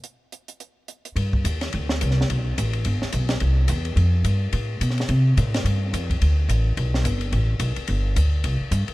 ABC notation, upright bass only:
X:1
M:4/4
L:1/8
Q:"Swing" 1/4=214
K:Gphr
V:1 name="Upright bass" clef=bass
z8 | [K:Gmix] G,,2 _E,,2 D,,2 C,,2 | B,,,2 A,,,2 G,,, z B,,,2 | C,,2 E,,2 F,,2 G,,2 |
A,,2 B,,2 C,2 A,,2 | G,,2 F,,2 D,,2 A,,,2 | B,,,2 G,,,2 A,,,2 B,,, z | G,,,2 D,,2 C,, z G,, z |]